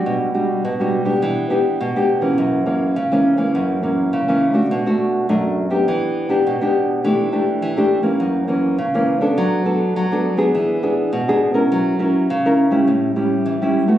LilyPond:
\new Staff \with { instrumentName = "Nylon-string guitar" } { \time 4/4 \key fis \phrygian \tempo 4 = 103 << { <g d' fis'>8 <g d' fis'>8 r16 <g d' fis'>8 <b d' g'>8. <b d' g'>8 r16 <b d' g'>8 <e ais cis'>16~ | <e ais cis'>8 <e ais cis'>8 r16 <e ais cis'>8 <e ais cis'>8. <e ais cis'>8. <e ais cis'>8 <a d' fis'>16~ | <a d' fis'>16 <a d' fis'>8. <a d' fis'>8. <b d' g'>4 <b d' g'>8 <b d' g'>8. | <a d' g'>8 <a d' g'>8. <a d' g'>8 <e ais cis'>8. <e ais cis'>8 r16 <e ais cis'>8 <b d' a'>16~ |
<b d' a'>8 <b d' a'>8. <b d' a'>8 <b d' gis'>8. <b d' gis'>8 r16 <b d' gis'>8 <cis' e' ais'>16~ | <cis' e' ais'>8 <cis' e' ais'>8 r16 <cis' e' ais'>8 <g cis' e'>8. <g cis' e'>8. <g cis' e'>8 <a b fis'>16 | } \\ { b,4 b,4 e4 b,4 | fis,4 cis4 fis,4 cis4 | b,4 fis,4 e4 b,4 | e4 e4 fis,4 cis4 |
fis4 fis4 e4 b,4 | fis4 cis4 a,4 e4 | } >> }